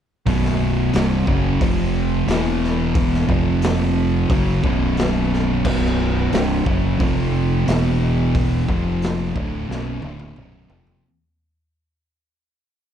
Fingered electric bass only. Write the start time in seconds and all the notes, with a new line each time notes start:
0.27 B0
0.94 C1
1.27 F#1
1.61 F1
2.27 E1
3.29 F1
4.30 F#1
4.64 B0
5.65 B0
6.33 C1
6.66 F#1
7.00 F1
7.68 E1
8.69 F1
9.36 D1
9.70 B0
10.03 D1
10.37 B0
10.69 F1